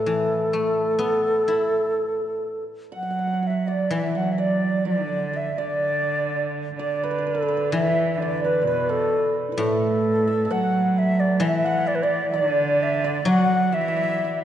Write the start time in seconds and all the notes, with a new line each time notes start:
Already playing: A2 A4 B4 D5
0.06 E3
0.53 A3
0.99 B3
1.48 E4
2.92 F#3 F#5
3.03 F#5
3.10 F#5
3.19 F#5
3.27 F#5
3.34 F#5
3.43 F#5
3.47 E5 F#5
3.68 D5
3.90 E3 E5
4.15 F#3 F#5
4.32 E5
4.38 D5
4.85 D3 D5
5.33 E5
5.58 D3 D5
6.75 D3 D5
6.79 D5
6.96 D5
7.03 B4
7.11 B4
7.18 B4
7.27 A4 B4
7.35 B4
7.42 B4
7.48 B4
7.57 B4
7.72 E3 E5
8.14 D3 E5
8.21 D5
8.44 B4
8.61 B2 D5
8.67 B4
8.89 A4
9.48 D4 E4 B4
9.56 A2 F#4 A4
10.27 E5
10.45 A5
10.49 F#3 F#5
10.99 E5
11.20 D5
11.40 E3 E5
11.65 F#5
11.87 D5
11.95 B4
12.03 D5
12.29 E5
12.33 D3 D5
12.83 E5
13.04 D5
13.25 F#3 F#5
13.72 E3 E5
13.81 E5
13.88 E5
13.97 E5
14.04 E5
14.10 E5
14.18 E5
14.25 E5